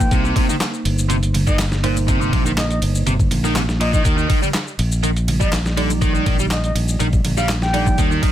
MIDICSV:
0, 0, Header, 1, 6, 480
1, 0, Start_track
1, 0, Key_signature, -3, "minor"
1, 0, Tempo, 491803
1, 114, Time_signature, 4, 2, 24, 8
1, 8119, End_track
2, 0, Start_track
2, 0, Title_t, "Soft synth lead"
2, 0, Program_c, 0, 80
2, 0, Note_on_c, 0, 79, 98
2, 113, Note_off_c, 0, 79, 0
2, 1440, Note_on_c, 0, 75, 95
2, 1548, Note_off_c, 0, 75, 0
2, 2510, Note_on_c, 0, 75, 91
2, 2593, Note_off_c, 0, 75, 0
2, 2641, Note_on_c, 0, 75, 79
2, 2714, Note_off_c, 0, 75, 0
2, 3713, Note_on_c, 0, 75, 87
2, 3794, Note_off_c, 0, 75, 0
2, 3834, Note_on_c, 0, 75, 80
2, 3910, Note_off_c, 0, 75, 0
2, 5281, Note_on_c, 0, 75, 93
2, 5389, Note_off_c, 0, 75, 0
2, 6353, Note_on_c, 0, 75, 94
2, 6434, Note_off_c, 0, 75, 0
2, 6484, Note_on_c, 0, 75, 80
2, 6555, Note_off_c, 0, 75, 0
2, 7196, Note_on_c, 0, 77, 92
2, 7306, Note_off_c, 0, 77, 0
2, 7436, Note_on_c, 0, 79, 99
2, 7792, Note_off_c, 0, 79, 0
2, 8119, End_track
3, 0, Start_track
3, 0, Title_t, "Tine electric piano"
3, 0, Program_c, 1, 4
3, 0, Note_on_c, 1, 58, 82
3, 0, Note_on_c, 1, 63, 73
3, 0, Note_on_c, 1, 72, 89
3, 1766, Note_off_c, 1, 72, 0
3, 1767, Note_off_c, 1, 58, 0
3, 1767, Note_off_c, 1, 63, 0
3, 1792, Note_on_c, 1, 58, 83
3, 1792, Note_on_c, 1, 63, 73
3, 1792, Note_on_c, 1, 72, 89
3, 3686, Note_off_c, 1, 58, 0
3, 3686, Note_off_c, 1, 63, 0
3, 3686, Note_off_c, 1, 72, 0
3, 5632, Note_on_c, 1, 55, 79
3, 5633, Note_on_c, 1, 63, 74
3, 5633, Note_on_c, 1, 74, 90
3, 7526, Note_off_c, 1, 55, 0
3, 7526, Note_off_c, 1, 63, 0
3, 7526, Note_off_c, 1, 74, 0
3, 7551, Note_on_c, 1, 74, 91
3, 7552, Note_on_c, 1, 55, 84
3, 7552, Note_on_c, 1, 63, 73
3, 8119, Note_off_c, 1, 55, 0
3, 8119, Note_off_c, 1, 63, 0
3, 8119, Note_off_c, 1, 74, 0
3, 8119, End_track
4, 0, Start_track
4, 0, Title_t, "Overdriven electric guitar"
4, 0, Program_c, 2, 29
4, 117, Note_on_c, 2, 48, 103
4, 229, Note_off_c, 2, 48, 0
4, 242, Note_on_c, 2, 48, 78
4, 344, Note_off_c, 2, 48, 0
4, 356, Note_on_c, 2, 48, 101
4, 451, Note_off_c, 2, 48, 0
4, 480, Note_on_c, 2, 51, 79
4, 532, Note_off_c, 2, 51, 0
4, 1070, Note_on_c, 2, 48, 84
4, 1129, Note_off_c, 2, 48, 0
4, 1436, Note_on_c, 2, 51, 79
4, 1524, Note_off_c, 2, 51, 0
4, 1791, Note_on_c, 2, 46, 107
4, 1913, Note_off_c, 2, 46, 0
4, 2029, Note_on_c, 2, 48, 105
4, 2145, Note_off_c, 2, 48, 0
4, 2158, Note_on_c, 2, 48, 78
4, 2260, Note_off_c, 2, 48, 0
4, 2272, Note_on_c, 2, 48, 101
4, 2368, Note_off_c, 2, 48, 0
4, 2398, Note_on_c, 2, 51, 75
4, 2451, Note_off_c, 2, 51, 0
4, 2993, Note_on_c, 2, 48, 84
4, 3051, Note_off_c, 2, 48, 0
4, 3359, Note_on_c, 2, 51, 77
4, 3445, Note_off_c, 2, 51, 0
4, 3471, Note_on_c, 2, 48, 86
4, 3530, Note_off_c, 2, 48, 0
4, 3713, Note_on_c, 2, 46, 76
4, 3827, Note_off_c, 2, 46, 0
4, 3837, Note_on_c, 2, 51, 73
4, 3938, Note_off_c, 2, 51, 0
4, 3950, Note_on_c, 2, 51, 99
4, 4066, Note_off_c, 2, 51, 0
4, 4079, Note_on_c, 2, 51, 78
4, 4178, Note_off_c, 2, 51, 0
4, 4190, Note_on_c, 2, 51, 102
4, 4287, Note_off_c, 2, 51, 0
4, 4317, Note_on_c, 2, 55, 76
4, 4370, Note_off_c, 2, 55, 0
4, 4914, Note_on_c, 2, 51, 82
4, 4971, Note_off_c, 2, 51, 0
4, 5275, Note_on_c, 2, 55, 78
4, 5364, Note_off_c, 2, 55, 0
4, 5632, Note_on_c, 2, 50, 100
4, 5753, Note_off_c, 2, 50, 0
4, 5872, Note_on_c, 2, 51, 102
4, 5986, Note_off_c, 2, 51, 0
4, 5999, Note_on_c, 2, 51, 78
4, 6102, Note_off_c, 2, 51, 0
4, 6114, Note_on_c, 2, 51, 99
4, 6209, Note_off_c, 2, 51, 0
4, 6243, Note_on_c, 2, 55, 78
4, 6293, Note_off_c, 2, 55, 0
4, 6833, Note_on_c, 2, 51, 83
4, 6891, Note_off_c, 2, 51, 0
4, 7197, Note_on_c, 2, 55, 78
4, 7285, Note_off_c, 2, 55, 0
4, 7550, Note_on_c, 2, 50, 101
4, 7672, Note_off_c, 2, 50, 0
4, 7792, Note_on_c, 2, 51, 102
4, 7907, Note_off_c, 2, 51, 0
4, 7916, Note_on_c, 2, 51, 80
4, 8022, Note_off_c, 2, 51, 0
4, 8034, Note_on_c, 2, 51, 106
4, 8119, Note_off_c, 2, 51, 0
4, 8119, End_track
5, 0, Start_track
5, 0, Title_t, "Fingered electric bass"
5, 0, Program_c, 3, 33
5, 111, Note_on_c, 3, 36, 101
5, 310, Note_off_c, 3, 36, 0
5, 831, Note_on_c, 3, 31, 97
5, 2238, Note_off_c, 3, 31, 0
5, 2272, Note_on_c, 3, 34, 93
5, 2719, Note_off_c, 3, 34, 0
5, 2751, Note_on_c, 3, 31, 102
5, 2988, Note_off_c, 3, 31, 0
5, 2994, Note_on_c, 3, 31, 96
5, 3191, Note_off_c, 3, 31, 0
5, 3231, Note_on_c, 3, 34, 89
5, 3918, Note_off_c, 3, 34, 0
5, 3954, Note_on_c, 3, 39, 97
5, 4151, Note_off_c, 3, 39, 0
5, 4674, Note_on_c, 3, 34, 98
5, 6080, Note_off_c, 3, 34, 0
5, 6112, Note_on_c, 3, 34, 94
5, 6559, Note_off_c, 3, 34, 0
5, 6590, Note_on_c, 3, 34, 99
5, 6825, Note_off_c, 3, 34, 0
5, 6831, Note_on_c, 3, 34, 95
5, 7030, Note_off_c, 3, 34, 0
5, 7072, Note_on_c, 3, 34, 92
5, 7759, Note_off_c, 3, 34, 0
5, 7790, Note_on_c, 3, 39, 102
5, 7989, Note_off_c, 3, 39, 0
5, 8119, End_track
6, 0, Start_track
6, 0, Title_t, "Drums"
6, 0, Note_on_c, 9, 36, 100
6, 4, Note_on_c, 9, 82, 67
6, 96, Note_off_c, 9, 36, 0
6, 101, Note_off_c, 9, 82, 0
6, 110, Note_on_c, 9, 42, 85
6, 112, Note_on_c, 9, 36, 109
6, 119, Note_on_c, 9, 82, 57
6, 208, Note_off_c, 9, 42, 0
6, 209, Note_off_c, 9, 36, 0
6, 217, Note_off_c, 9, 82, 0
6, 244, Note_on_c, 9, 82, 33
6, 342, Note_off_c, 9, 82, 0
6, 350, Note_on_c, 9, 42, 72
6, 352, Note_on_c, 9, 36, 99
6, 356, Note_on_c, 9, 62, 57
6, 357, Note_on_c, 9, 51, 81
6, 448, Note_off_c, 9, 42, 0
6, 450, Note_off_c, 9, 36, 0
6, 453, Note_off_c, 9, 62, 0
6, 454, Note_off_c, 9, 51, 0
6, 474, Note_on_c, 9, 63, 69
6, 478, Note_on_c, 9, 64, 85
6, 484, Note_on_c, 9, 82, 66
6, 572, Note_off_c, 9, 63, 0
6, 576, Note_off_c, 9, 64, 0
6, 582, Note_off_c, 9, 82, 0
6, 590, Note_on_c, 9, 38, 121
6, 590, Note_on_c, 9, 42, 92
6, 597, Note_on_c, 9, 39, 110
6, 597, Note_on_c, 9, 82, 52
6, 688, Note_off_c, 9, 38, 0
6, 688, Note_off_c, 9, 42, 0
6, 694, Note_off_c, 9, 39, 0
6, 694, Note_off_c, 9, 82, 0
6, 721, Note_on_c, 9, 82, 34
6, 819, Note_off_c, 9, 82, 0
6, 832, Note_on_c, 9, 42, 66
6, 836, Note_on_c, 9, 51, 85
6, 930, Note_off_c, 9, 42, 0
6, 933, Note_off_c, 9, 51, 0
6, 963, Note_on_c, 9, 82, 67
6, 1060, Note_off_c, 9, 82, 0
6, 1071, Note_on_c, 9, 42, 91
6, 1078, Note_on_c, 9, 82, 56
6, 1169, Note_off_c, 9, 42, 0
6, 1175, Note_off_c, 9, 82, 0
6, 1198, Note_on_c, 9, 42, 45
6, 1203, Note_on_c, 9, 82, 34
6, 1296, Note_off_c, 9, 42, 0
6, 1300, Note_off_c, 9, 82, 0
6, 1312, Note_on_c, 9, 42, 70
6, 1314, Note_on_c, 9, 63, 97
6, 1315, Note_on_c, 9, 51, 86
6, 1322, Note_on_c, 9, 64, 95
6, 1409, Note_off_c, 9, 42, 0
6, 1412, Note_off_c, 9, 63, 0
6, 1413, Note_off_c, 9, 51, 0
6, 1420, Note_off_c, 9, 64, 0
6, 1438, Note_on_c, 9, 36, 95
6, 1439, Note_on_c, 9, 82, 67
6, 1442, Note_on_c, 9, 62, 57
6, 1536, Note_off_c, 9, 36, 0
6, 1537, Note_off_c, 9, 82, 0
6, 1540, Note_off_c, 9, 62, 0
6, 1549, Note_on_c, 9, 38, 119
6, 1549, Note_on_c, 9, 46, 81
6, 1554, Note_on_c, 9, 39, 113
6, 1554, Note_on_c, 9, 82, 55
6, 1647, Note_off_c, 9, 38, 0
6, 1647, Note_off_c, 9, 46, 0
6, 1651, Note_off_c, 9, 39, 0
6, 1651, Note_off_c, 9, 82, 0
6, 1677, Note_on_c, 9, 38, 59
6, 1680, Note_on_c, 9, 82, 33
6, 1774, Note_off_c, 9, 38, 0
6, 1777, Note_off_c, 9, 82, 0
6, 1793, Note_on_c, 9, 42, 70
6, 1795, Note_on_c, 9, 51, 83
6, 1890, Note_off_c, 9, 42, 0
6, 1892, Note_off_c, 9, 51, 0
6, 1916, Note_on_c, 9, 63, 72
6, 1921, Note_on_c, 9, 51, 49
6, 1921, Note_on_c, 9, 82, 69
6, 1925, Note_on_c, 9, 62, 52
6, 2014, Note_off_c, 9, 63, 0
6, 2019, Note_off_c, 9, 51, 0
6, 2019, Note_off_c, 9, 82, 0
6, 2023, Note_off_c, 9, 62, 0
6, 2032, Note_on_c, 9, 42, 87
6, 2033, Note_on_c, 9, 36, 108
6, 2034, Note_on_c, 9, 82, 54
6, 2130, Note_off_c, 9, 36, 0
6, 2130, Note_off_c, 9, 42, 0
6, 2132, Note_off_c, 9, 82, 0
6, 2157, Note_on_c, 9, 63, 60
6, 2163, Note_on_c, 9, 82, 31
6, 2255, Note_off_c, 9, 63, 0
6, 2260, Note_off_c, 9, 82, 0
6, 2272, Note_on_c, 9, 62, 59
6, 2273, Note_on_c, 9, 36, 99
6, 2274, Note_on_c, 9, 42, 72
6, 2274, Note_on_c, 9, 51, 81
6, 2369, Note_off_c, 9, 62, 0
6, 2371, Note_off_c, 9, 36, 0
6, 2372, Note_off_c, 9, 42, 0
6, 2372, Note_off_c, 9, 51, 0
6, 2393, Note_on_c, 9, 63, 64
6, 2403, Note_on_c, 9, 82, 66
6, 2406, Note_on_c, 9, 64, 78
6, 2491, Note_off_c, 9, 63, 0
6, 2500, Note_off_c, 9, 82, 0
6, 2503, Note_off_c, 9, 64, 0
6, 2513, Note_on_c, 9, 38, 125
6, 2513, Note_on_c, 9, 42, 89
6, 2517, Note_on_c, 9, 39, 108
6, 2517, Note_on_c, 9, 82, 50
6, 2610, Note_off_c, 9, 38, 0
6, 2610, Note_off_c, 9, 42, 0
6, 2615, Note_off_c, 9, 39, 0
6, 2615, Note_off_c, 9, 82, 0
6, 2640, Note_on_c, 9, 42, 45
6, 2644, Note_on_c, 9, 82, 33
6, 2738, Note_off_c, 9, 42, 0
6, 2741, Note_off_c, 9, 82, 0
6, 2752, Note_on_c, 9, 42, 69
6, 2756, Note_on_c, 9, 51, 82
6, 2850, Note_off_c, 9, 42, 0
6, 2854, Note_off_c, 9, 51, 0
6, 2881, Note_on_c, 9, 82, 62
6, 2978, Note_off_c, 9, 82, 0
6, 2990, Note_on_c, 9, 64, 77
6, 2993, Note_on_c, 9, 42, 89
6, 2998, Note_on_c, 9, 82, 54
6, 3087, Note_off_c, 9, 64, 0
6, 3090, Note_off_c, 9, 42, 0
6, 3096, Note_off_c, 9, 82, 0
6, 3119, Note_on_c, 9, 36, 95
6, 3122, Note_on_c, 9, 51, 50
6, 3122, Note_on_c, 9, 82, 33
6, 3216, Note_off_c, 9, 36, 0
6, 3219, Note_off_c, 9, 51, 0
6, 3219, Note_off_c, 9, 82, 0
6, 3231, Note_on_c, 9, 42, 71
6, 3233, Note_on_c, 9, 64, 85
6, 3237, Note_on_c, 9, 51, 81
6, 3329, Note_off_c, 9, 42, 0
6, 3330, Note_off_c, 9, 64, 0
6, 3335, Note_off_c, 9, 51, 0
6, 3359, Note_on_c, 9, 38, 40
6, 3363, Note_on_c, 9, 82, 63
6, 3456, Note_off_c, 9, 38, 0
6, 3461, Note_off_c, 9, 82, 0
6, 3472, Note_on_c, 9, 38, 116
6, 3472, Note_on_c, 9, 42, 87
6, 3475, Note_on_c, 9, 39, 113
6, 3475, Note_on_c, 9, 82, 53
6, 3570, Note_off_c, 9, 38, 0
6, 3570, Note_off_c, 9, 42, 0
6, 3572, Note_off_c, 9, 39, 0
6, 3572, Note_off_c, 9, 82, 0
6, 3599, Note_on_c, 9, 38, 57
6, 3602, Note_on_c, 9, 82, 33
6, 3697, Note_off_c, 9, 38, 0
6, 3699, Note_off_c, 9, 82, 0
6, 3716, Note_on_c, 9, 51, 82
6, 3717, Note_on_c, 9, 42, 70
6, 3814, Note_off_c, 9, 42, 0
6, 3814, Note_off_c, 9, 51, 0
6, 3840, Note_on_c, 9, 36, 98
6, 3842, Note_on_c, 9, 82, 65
6, 3937, Note_off_c, 9, 36, 0
6, 3939, Note_off_c, 9, 82, 0
6, 3953, Note_on_c, 9, 36, 106
6, 3954, Note_on_c, 9, 42, 85
6, 3955, Note_on_c, 9, 82, 52
6, 4051, Note_off_c, 9, 36, 0
6, 4051, Note_off_c, 9, 42, 0
6, 4052, Note_off_c, 9, 82, 0
6, 4080, Note_on_c, 9, 82, 30
6, 4178, Note_off_c, 9, 82, 0
6, 4192, Note_on_c, 9, 62, 61
6, 4193, Note_on_c, 9, 36, 99
6, 4194, Note_on_c, 9, 42, 71
6, 4194, Note_on_c, 9, 51, 80
6, 4289, Note_off_c, 9, 62, 0
6, 4291, Note_off_c, 9, 36, 0
6, 4291, Note_off_c, 9, 51, 0
6, 4292, Note_off_c, 9, 42, 0
6, 4316, Note_on_c, 9, 63, 62
6, 4322, Note_on_c, 9, 82, 63
6, 4329, Note_on_c, 9, 64, 78
6, 4413, Note_off_c, 9, 63, 0
6, 4420, Note_off_c, 9, 82, 0
6, 4427, Note_off_c, 9, 64, 0
6, 4433, Note_on_c, 9, 39, 104
6, 4433, Note_on_c, 9, 82, 50
6, 4435, Note_on_c, 9, 38, 119
6, 4435, Note_on_c, 9, 42, 91
6, 4531, Note_off_c, 9, 39, 0
6, 4531, Note_off_c, 9, 82, 0
6, 4532, Note_off_c, 9, 38, 0
6, 4532, Note_off_c, 9, 42, 0
6, 4560, Note_on_c, 9, 82, 32
6, 4657, Note_off_c, 9, 82, 0
6, 4674, Note_on_c, 9, 51, 83
6, 4677, Note_on_c, 9, 42, 67
6, 4772, Note_off_c, 9, 51, 0
6, 4774, Note_off_c, 9, 42, 0
6, 4802, Note_on_c, 9, 82, 61
6, 4899, Note_off_c, 9, 82, 0
6, 4915, Note_on_c, 9, 42, 90
6, 4915, Note_on_c, 9, 82, 52
6, 5012, Note_off_c, 9, 42, 0
6, 5013, Note_off_c, 9, 82, 0
6, 5041, Note_on_c, 9, 42, 44
6, 5042, Note_on_c, 9, 82, 32
6, 5139, Note_off_c, 9, 42, 0
6, 5140, Note_off_c, 9, 82, 0
6, 5153, Note_on_c, 9, 64, 89
6, 5154, Note_on_c, 9, 51, 84
6, 5156, Note_on_c, 9, 63, 83
6, 5157, Note_on_c, 9, 42, 72
6, 5250, Note_off_c, 9, 64, 0
6, 5252, Note_off_c, 9, 51, 0
6, 5254, Note_off_c, 9, 63, 0
6, 5255, Note_off_c, 9, 42, 0
6, 5280, Note_on_c, 9, 36, 94
6, 5282, Note_on_c, 9, 82, 63
6, 5286, Note_on_c, 9, 62, 60
6, 5378, Note_off_c, 9, 36, 0
6, 5380, Note_off_c, 9, 82, 0
6, 5383, Note_off_c, 9, 62, 0
6, 5395, Note_on_c, 9, 39, 108
6, 5395, Note_on_c, 9, 82, 52
6, 5397, Note_on_c, 9, 38, 117
6, 5397, Note_on_c, 9, 46, 79
6, 5492, Note_off_c, 9, 39, 0
6, 5492, Note_off_c, 9, 82, 0
6, 5495, Note_off_c, 9, 38, 0
6, 5495, Note_off_c, 9, 46, 0
6, 5522, Note_on_c, 9, 38, 59
6, 5522, Note_on_c, 9, 82, 30
6, 5619, Note_off_c, 9, 38, 0
6, 5620, Note_off_c, 9, 82, 0
6, 5635, Note_on_c, 9, 42, 69
6, 5636, Note_on_c, 9, 51, 85
6, 5733, Note_off_c, 9, 42, 0
6, 5734, Note_off_c, 9, 51, 0
6, 5762, Note_on_c, 9, 51, 49
6, 5762, Note_on_c, 9, 62, 52
6, 5762, Note_on_c, 9, 82, 61
6, 5767, Note_on_c, 9, 63, 62
6, 5860, Note_off_c, 9, 51, 0
6, 5860, Note_off_c, 9, 62, 0
6, 5860, Note_off_c, 9, 82, 0
6, 5865, Note_off_c, 9, 63, 0
6, 5873, Note_on_c, 9, 36, 108
6, 5873, Note_on_c, 9, 82, 53
6, 5874, Note_on_c, 9, 42, 86
6, 5971, Note_off_c, 9, 36, 0
6, 5971, Note_off_c, 9, 82, 0
6, 5972, Note_off_c, 9, 42, 0
6, 6002, Note_on_c, 9, 82, 31
6, 6010, Note_on_c, 9, 63, 59
6, 6100, Note_off_c, 9, 82, 0
6, 6108, Note_off_c, 9, 63, 0
6, 6112, Note_on_c, 9, 36, 99
6, 6112, Note_on_c, 9, 42, 71
6, 6114, Note_on_c, 9, 51, 84
6, 6114, Note_on_c, 9, 62, 69
6, 6210, Note_off_c, 9, 36, 0
6, 6210, Note_off_c, 9, 42, 0
6, 6211, Note_off_c, 9, 51, 0
6, 6211, Note_off_c, 9, 62, 0
6, 6240, Note_on_c, 9, 82, 60
6, 6242, Note_on_c, 9, 63, 65
6, 6247, Note_on_c, 9, 64, 70
6, 6338, Note_off_c, 9, 82, 0
6, 6339, Note_off_c, 9, 63, 0
6, 6345, Note_off_c, 9, 64, 0
6, 6353, Note_on_c, 9, 38, 117
6, 6353, Note_on_c, 9, 42, 95
6, 6355, Note_on_c, 9, 39, 101
6, 6355, Note_on_c, 9, 82, 48
6, 6451, Note_off_c, 9, 38, 0
6, 6451, Note_off_c, 9, 42, 0
6, 6453, Note_off_c, 9, 39, 0
6, 6453, Note_off_c, 9, 82, 0
6, 6478, Note_on_c, 9, 42, 46
6, 6481, Note_on_c, 9, 82, 32
6, 6576, Note_off_c, 9, 42, 0
6, 6579, Note_off_c, 9, 82, 0
6, 6593, Note_on_c, 9, 42, 69
6, 6595, Note_on_c, 9, 51, 86
6, 6691, Note_off_c, 9, 42, 0
6, 6693, Note_off_c, 9, 51, 0
6, 6720, Note_on_c, 9, 82, 63
6, 6818, Note_off_c, 9, 82, 0
6, 6832, Note_on_c, 9, 82, 53
6, 6834, Note_on_c, 9, 42, 91
6, 6930, Note_off_c, 9, 82, 0
6, 6931, Note_off_c, 9, 42, 0
6, 6959, Note_on_c, 9, 36, 96
6, 6959, Note_on_c, 9, 51, 50
6, 6959, Note_on_c, 9, 82, 32
6, 7056, Note_off_c, 9, 36, 0
6, 7057, Note_off_c, 9, 51, 0
6, 7057, Note_off_c, 9, 82, 0
6, 7072, Note_on_c, 9, 51, 84
6, 7073, Note_on_c, 9, 42, 72
6, 7080, Note_on_c, 9, 64, 90
6, 7169, Note_off_c, 9, 51, 0
6, 7170, Note_off_c, 9, 42, 0
6, 7178, Note_off_c, 9, 64, 0
6, 7197, Note_on_c, 9, 82, 63
6, 7198, Note_on_c, 9, 38, 40
6, 7294, Note_off_c, 9, 82, 0
6, 7296, Note_off_c, 9, 38, 0
6, 7311, Note_on_c, 9, 38, 117
6, 7311, Note_on_c, 9, 39, 106
6, 7311, Note_on_c, 9, 42, 88
6, 7311, Note_on_c, 9, 82, 52
6, 7409, Note_off_c, 9, 38, 0
6, 7409, Note_off_c, 9, 39, 0
6, 7409, Note_off_c, 9, 42, 0
6, 7409, Note_off_c, 9, 82, 0
6, 7437, Note_on_c, 9, 38, 58
6, 7439, Note_on_c, 9, 82, 32
6, 7535, Note_off_c, 9, 38, 0
6, 7536, Note_off_c, 9, 82, 0
6, 7552, Note_on_c, 9, 42, 68
6, 7555, Note_on_c, 9, 51, 83
6, 7650, Note_off_c, 9, 42, 0
6, 7653, Note_off_c, 9, 51, 0
6, 7677, Note_on_c, 9, 36, 96
6, 7679, Note_on_c, 9, 82, 63
6, 7774, Note_off_c, 9, 36, 0
6, 7776, Note_off_c, 9, 82, 0
6, 7790, Note_on_c, 9, 36, 112
6, 7790, Note_on_c, 9, 42, 85
6, 7793, Note_on_c, 9, 82, 53
6, 7887, Note_off_c, 9, 42, 0
6, 7888, Note_off_c, 9, 36, 0
6, 7890, Note_off_c, 9, 82, 0
6, 7918, Note_on_c, 9, 82, 31
6, 8015, Note_off_c, 9, 82, 0
6, 8030, Note_on_c, 9, 42, 71
6, 8031, Note_on_c, 9, 36, 100
6, 8031, Note_on_c, 9, 51, 88
6, 8037, Note_on_c, 9, 62, 62
6, 8119, Note_off_c, 9, 36, 0
6, 8119, Note_off_c, 9, 42, 0
6, 8119, Note_off_c, 9, 51, 0
6, 8119, Note_off_c, 9, 62, 0
6, 8119, End_track
0, 0, End_of_file